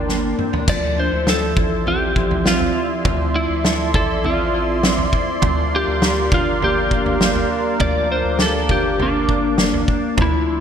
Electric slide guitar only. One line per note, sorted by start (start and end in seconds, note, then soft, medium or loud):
0.00 0.35 D4 medium
0.69 0.99 D5 medium
1.00 1.29 C5 medium
1.30 1.87 A4 medium
1.88 2.47 G4 medium
2.47 2.88 F4 medium
3.36 3.91 E4 medium
3.95 4.26 A4 medium
4.26 4.80 F4 medium
5.76 6.34 G4 medium
6.34 6.64 F4 medium
6.64 7.48 G4 medium
7.81 8.11 D5 medium
8.12 8.42 C5 medium
8.42 8.72 A4 medium
8.71 9.01 G4 medium
9.02 9.86 D4 medium
10.22 10.60 E4 medium